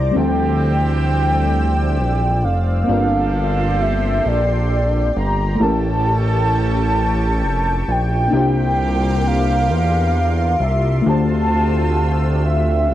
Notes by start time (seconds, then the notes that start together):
Already playing: C2 D4 F4 A#4 C5 D5 A#5 D6
0.11 E3 G3 C4 D4 G4 G5 E6
0.16 D2 F3 A4 G5
1.98 A#1
2.44 F1 F5
2.84 F3 A#3 C4 D4 A4 G5 C6
2.88 G1 F4 G4 A#4
3.82 E5
4.25 A#1 D5
5.16 G1 A#5
5.56 E3 A3 A#3
5.60 A1 C#4 E4 G4 A4 G5 A5 C#6
5.64 C#4 A#4
7.43 F1
7.88 A#1 G5
8.28 D3 A#3 D4 G4
8.32 C2 E4 F4 G4 A#4 C6 D6
8.37 F4 C5
9.27 F5
9.69 E2
10.60 C2 E5
11.02 C3 A3 D4 F4 G4 E6
11.06 D2 G4 C5 A5
12.45 E5
12.88 C2